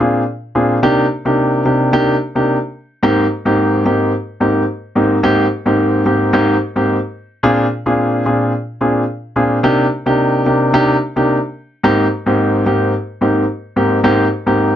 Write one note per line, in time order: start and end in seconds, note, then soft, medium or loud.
0.00 0.21 A#2 medium
0.00 0.22 C4 medium
0.00 0.22 D4 medium
0.00 0.22 F4 medium
0.00 0.22 G#4 medium
0.55 0.77 A#2 medium
0.55 0.77 C4 medium
0.55 0.77 D4 medium
0.55 0.77 F4 medium
0.55 0.77 G#4 medium
0.83 1.04 C3 medium
0.83 1.04 A#3 medium
0.83 1.04 D4 medium
0.83 1.04 D#4 medium
0.83 1.04 G4 loud
1.25 1.62 C3 medium
1.25 1.62 A#3 medium
1.25 1.62 D4 medium
1.25 1.63 D#4 medium
1.25 1.63 G4 medium
1.65 1.91 C3 medium
1.65 1.91 A#3 medium
1.65 1.91 D4 medium
1.65 1.91 D#4 medium
1.65 1.91 G4 medium
1.93 2.14 C3 medium
1.93 2.14 A#3 medium
1.93 2.14 D4 medium
1.93 2.14 D#4 medium
1.93 2.14 G4 loud
2.35 2.55 C3 medium
2.35 2.55 A#3 medium
2.35 2.56 D4 medium
2.35 2.56 D#4 medium
2.35 2.56 G4 medium
3.03 3.24 G#2 loud
3.03 3.24 A#3 medium
3.03 3.24 C4 medium
3.03 3.24 D#4 medium
3.03 3.25 G4 loud
3.45 3.82 G#2 medium
3.45 3.83 A#3 medium
3.45 3.83 C4 medium
3.45 3.83 D#4 medium
3.45 3.83 G4 medium
3.85 4.11 G#2 medium
3.85 4.11 A#3 medium
3.85 4.11 C4 medium
3.85 4.11 D#4 medium
3.85 4.11 G4 medium
4.40 4.62 G#2 medium
4.40 4.62 A#3 medium
4.40 4.62 C4 medium
4.40 4.62 D#4 medium
4.40 4.62 G4 medium
4.95 5.17 G#2 medium
4.95 5.17 A#3 medium
4.95 5.17 C4 medium
4.95 5.17 D#4 medium
4.95 5.17 G4 medium
5.23 5.44 G#2 medium
5.23 5.45 A#3 medium
5.23 5.45 C4 medium
5.23 5.45 D#4 medium
5.23 5.45 G4 loud
5.66 6.03 G#2 medium
5.66 6.03 A#3 medium
5.66 6.03 C4 medium
5.66 6.03 D#4 medium
5.66 6.03 G4 medium
6.06 6.31 G#2 medium
6.06 6.31 A#3 medium
6.06 6.31 C4 medium
6.06 6.31 D#4 medium
6.06 6.31 G4 medium
6.33 6.54 G#2 loud
6.33 6.55 A#3 medium
6.33 6.55 C4 medium
6.33 6.55 D#4 medium
6.33 6.55 G4 loud
6.76 6.96 G#2 medium
6.76 6.96 A#3 medium
6.76 6.96 C4 medium
6.76 6.96 D#4 medium
6.76 6.96 G4 medium
7.43 7.65 A#2 loud
7.43 7.65 C4 medium
7.43 7.65 D4 medium
7.43 7.65 F4 medium
7.43 7.65 G#4 loud
7.86 8.23 A#2 medium
7.86 8.23 C4 medium
7.86 8.23 D4 medium
7.86 8.23 F4 medium
7.86 8.23 G#4 medium
8.26 8.51 A#2 medium
8.26 8.51 C4 medium
8.26 8.52 D4 medium
8.26 8.52 F4 medium
8.26 8.52 G#4 medium
8.81 9.02 A#2 medium
8.81 9.02 C4 medium
8.81 9.02 D4 medium
8.81 9.02 F4 medium
8.81 9.03 G#4 medium
9.36 9.57 A#2 medium
9.36 9.57 C4 medium
9.36 9.57 D4 medium
9.36 9.58 F4 medium
9.36 9.58 G#4 medium
9.63 9.85 C3 loud
9.63 9.85 A#3 medium
9.63 9.85 D4 medium
9.63 9.85 D#4 medium
9.63 9.85 G4 loud
10.06 10.43 C3 medium
10.06 10.43 A#3 medium
10.06 10.43 D4 medium
10.06 10.43 D#4 medium
10.06 10.43 G4 medium
10.46 10.72 C3 medium
10.46 10.72 A#3 medium
10.46 10.72 D4 medium
10.46 10.72 D#4 medium
10.46 10.72 G4 medium
10.73 10.95 C3 loud
10.73 10.95 A#3 medium
10.73 10.95 D4 medium
10.73 10.95 D#4 medium
10.73 10.95 G4 loud
11.16 11.36 C3 medium
11.16 11.36 A#3 medium
11.16 11.36 D4 medium
11.16 11.36 D#4 medium
11.16 11.36 G4 medium
11.83 12.05 G#2 loud
11.83 12.05 A#3 medium
11.83 12.05 C4 medium
11.83 12.05 D#4 medium
11.83 12.05 G4 loud
12.26 12.63 G#2 medium
12.26 12.63 A#3 medium
12.26 12.63 C4 medium
12.26 12.63 D#4 medium
12.26 12.64 G4 medium
12.66 12.92 G#2 medium
12.66 12.92 A#3 medium
12.66 12.92 C4 medium
12.66 12.92 D#4 medium
12.66 12.92 G4 medium
13.21 13.43 G#2 medium
13.21 13.43 A#3 medium
13.21 13.43 C4 medium
13.21 13.43 D#4 medium
13.21 13.43 G4 medium
13.76 13.98 G#2 medium
13.76 13.98 A#3 medium
13.76 13.98 C4 medium
13.76 13.98 D#4 medium
13.76 13.98 G4 medium
14.04 14.25 G#2 loud
14.04 14.25 A#3 medium
14.04 14.25 C4 medium
14.04 14.25 D#4 medium
14.04 14.25 G4 loud
14.46 14.76 G#2 medium
14.46 14.76 A#3 medium
14.46 14.76 C4 medium
14.46 14.76 D#4 medium
14.46 14.76 G4 medium